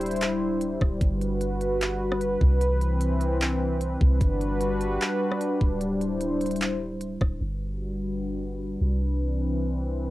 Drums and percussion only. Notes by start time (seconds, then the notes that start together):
0.01 closed hi-hat, open hi-hat
0.06 closed hi-hat
0.11 closed hi-hat
0.16 closed hi-hat
0.21 clap, closed hi-hat
0.61 closed hi-hat
0.81 kick, cross-stick
1.01 kick, closed hi-hat
1.21 closed hi-hat
1.41 closed hi-hat
1.61 closed hi-hat
1.81 clap, closed hi-hat
2.12 cross-stick
2.21 closed hi-hat
2.41 kick
2.61 closed hi-hat
2.81 closed hi-hat
3.01 closed hi-hat
3.21 closed hi-hat
3.41 clap, closed hi-hat
3.81 closed hi-hat
4.01 kick
4.21 kick, closed hi-hat
4.41 closed hi-hat
4.61 closed hi-hat
4.81 closed hi-hat
5.01 clap, closed hi-hat
5.32 cross-stick
5.41 closed hi-hat
5.61 kick
5.81 closed hi-hat
6.01 closed hi-hat
6.21 closed hi-hat
6.41 closed hi-hat, open hi-hat
6.46 closed hi-hat
6.51 closed hi-hat
6.56 closed hi-hat
6.61 clap, closed hi-hat
7.01 closed hi-hat
7.21 kick, cross-stick